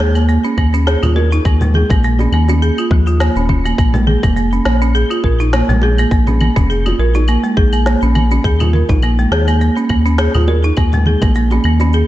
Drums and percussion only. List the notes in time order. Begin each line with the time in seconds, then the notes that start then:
0.00 snare
0.15 claves, shaker
0.29 shaker
0.44 shaker
0.58 kick, claves
0.74 shaker
0.87 snare, shaker
1.03 low conga, claves, shaker
1.16 high bongo
1.32 shaker
1.45 kick, claves, shaker
1.61 low conga, shaker
1.74 high conga
1.90 kick, low conga, claves, shaker
2.04 shaker
2.19 high bongo, shaker
2.33 claves
2.48 high bongo, shaker
2.62 shaker
2.78 claves, shaker
2.91 kick
3.07 shaker
3.20 snare, claves, shaker
3.36 shaker
3.49 kick, high conga
3.65 high bongo, claves, shaker
3.78 kick, claves, shaker
3.94 low conga, shaker
4.07 high conga
4.23 kick, low conga, claves, shaker
4.37 shaker
4.53 shaker
4.65 snare, claves
4.82 shaker
4.95 shaker
5.11 claves, shaker
5.24 kick
5.40 shaker
5.53 snare, claves, shaker
5.69 low conga, shaker
5.82 high bongo
5.98 claves, shaker
6.11 kick, shaker
6.27 low conga, shaker
6.41 high conga, claves
6.56 kick, low conga, shaker
6.70 shaker
6.86 high bongo, claves, shaker
7.15 high bongo, shaker
7.28 claves, shaker
7.44 shaker
7.57 kick
7.73 claves, shaker
7.86 snare, shaker
8.02 shaker
8.15 high conga, claves
8.31 high bongo, shaker
8.44 kick, shaker
8.60 low conga, claves, shaker
8.73 high conga
8.89 kick, low conga, shaker
9.02 claves, shaker
9.19 shaker
9.32 snare
9.48 claves, shaker
9.61 shaker
9.77 shaker
9.89 kick, claves
10.06 shaker
10.18 snare, shaker
10.34 low conga, claves, shaker
10.48 high bongo
10.64 shaker
10.77 kick, claves, shaker
10.93 low conga, shaker
11.06 high conga
11.22 kick, low conga, claves, shaker
11.35 shaker
11.51 high bongo, shaker
11.64 claves
11.80 high bongo, shaker
11.93 shaker